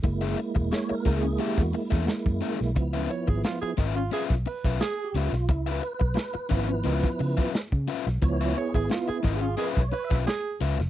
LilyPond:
<<
  \new Staff \with { instrumentName = "Overdriven electric guitar" } { \time 4/4 \key ges \major \tempo 4 = 88 r16 <des' aes' bes' fes''>16 r4 <des' aes' bes' fes''>16 r16 <des' aes' bes' fes''>16 r8 <des' aes' bes' fes''>16 r8 <des' aes' bes' fes''>16 r16 | r16 <des' f' ces'' e''>16 r4 <des' f' ces'' e''>16 r16 <des' f' ces'' e''>16 r8 <des' f' ces'' e''>16 r8 <des' f' ces'' e''>16 r16 | r16 <des' f' ces'' e''>16 r4 <des' f' ces'' e''>16 r16 <des' f' ces'' e''>16 r8 <des' f' ces'' e''>16 r8 <des' f' ces'' e''>16 r16 | r16 <des' f' ces'' e''>16 r4 <des' f' ces'' e''>16 r16 <des' f' ces'' e''>16 r8 <des' f' ces'' e''>16 r8 <des' f' ces'' e''>16 r16 | }
  \new Staff \with { instrumentName = "Tenor saxophone" } { \time 4/4 \key ges \major r1 | r8 des''16 aes'16 f'16 aes'16 r16 f'16 aes'16 r16 ces''8 aes'8 r8 | r1 | r8 des''16 aes'16 f'16 aes'16 r16 f'16 aes'16 r16 ces''8 aes'8 r8 | }
  \new Staff \with { instrumentName = "Tonewheel organ" } { \time 4/4 \key ges \major r4 \tuplet 3/2 { des''8 bes'8 aes'8 g'8 ges'8 fes'8~ } fes'4~ | fes'4 r2 \tuplet 3/2 { aes'8 g'8 f'8 } | \tuplet 3/2 { e'8 ces''8 ces''8~ } ces''2 r4 | des''8 aes'8 \tuplet 3/2 { f'8 e'8 aes'8 ces''8 des''8 e''8 } r4 | }
  \new Staff \with { instrumentName = "Tonewheel organ" } { \time 4/4 \key ges \major <aes bes fes'>1 | <f ces' e'>4. r2 r8 | r4. <f ces' e'>4. r4 | <f ces' e'>4. r2 r8 | }
  \new Staff \with { instrumentName = "Fingered electric bass" } { \clef bass \time 4/4 \key ges \major ges,,8 r16 fes,,16 r8 des,8 r16 fes,16 r16 fes,16 r16 ges,16 r16 ces,16 | des,8 r16 aes,,16 r8 aes,,8 r16 ces,16 r16 ces,16 r8 des,16 ces,16 | des,8 r16 ces,16 r8 aes,,8 des,16 r16 des16 r8 des16 r16 ces,16 | des,8 r16 aes,,16 r8 aes,,8 r16 ces,16 r16 ces,16 r8 des,16 f,,16 | }
  \new DrumStaff \with { instrumentName = "Drums" } \drummode { \time 4/4 <hh bd>8 hh16 bd16 <hh sn>8 <hh bd>8 hh16 <bd sn>16 hho16 <bd sn>16 <hh sn>16 bd16 hh16 sn16 | <hh bd>8 hh16 bd16 <hh sn>8 <hh bd sn>8 hh16 <bd sn>16 hho16 <bd sn>16 <hh sn>8 hh16 sn16 | <hh bd>8 hh16 bd16 <hh sn>8 <hh bd>8 hh16 <bd sn>16 hho16 <bd sn>16 <hh sn>16 bd16 hh16 sn16 | <hh bd>8 hh16 bd16 <hh sn>8 <hh bd sn>8 hh16 <bd sn>16 hho16 <bd sn>16 <hh sn>8 hh16 sn16 | }
>>